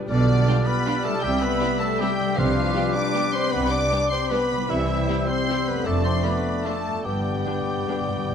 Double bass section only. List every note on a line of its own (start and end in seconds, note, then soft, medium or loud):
0.09 0.40 B1 medium
1.23 1.54 C2 medium
2.37 2.69 C2 medium
3.53 3.84 C2 medium
4.69 5.01 C2 medium
5.85 6.17 F1 medium
7.05 7.39 G1 medium
8.28 8.35 G1 medium